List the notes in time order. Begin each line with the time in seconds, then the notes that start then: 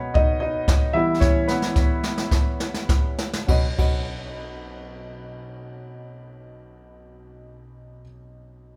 Already playing: B2 F#3 B3 C#4 D#4 B4 C#5
0.14 D#4 D#5, kick
0.40 D#4 D#5
0.68 kick, snare
0.93 E3 G3 B3 E4 E5
1.20 C#4 C#5, kick, snare
1.48 B3 B4, snare
1.62 snare
1.76 kick, snare
2.03 snare
2.18 snare
2.31 kick, snare
2.60 snare
2.74 snare
2.89 kick, snare
3.18 snare
3.33 snare
3.46 B1 C#4 F#4 B4, kick, ride
3.50 D#5
3.76 B1 C#4 F#4 B4, kick, ride
3.81 D#5